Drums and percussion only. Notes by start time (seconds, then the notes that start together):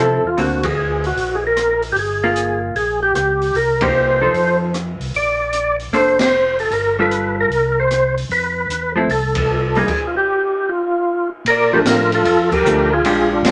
0.37 open hi-hat
0.63 kick, ride
1.04 open hi-hat
1.17 open hi-hat
1.57 cross-stick, closed hi-hat
1.82 open hi-hat
1.96 open hi-hat
2.36 closed hi-hat
2.76 open hi-hat
3.15 cross-stick, closed hi-hat
3.42 open hi-hat
3.55 open hi-hat
3.81 kick, ride
4.34 open hi-hat
4.74 cross-stick, closed hi-hat
5.01 open hi-hat
5.14 open hi-hat
5.53 closed hi-hat
5.79 open hi-hat
5.93 open hi-hat
6.19 snare, ride
6.59 open hi-hat
6.71 open hi-hat
7.11 closed hi-hat
7.52 open hi-hat
7.91 cross-stick, closed hi-hat
8.17 open hi-hat
8.31 open hi-hat
8.70 closed hi-hat
9.09 open hi-hat
9.35 kick, ride
9.75 open hi-hat
9.88 kick, crash
11.46 ride
11.86 snare, hi-hat pedal, ride
12.12 ride
12.25 ride
12.52 kick, crash
12.66 hi-hat pedal
13.05 ride
13.45 snare, hi-hat pedal, ride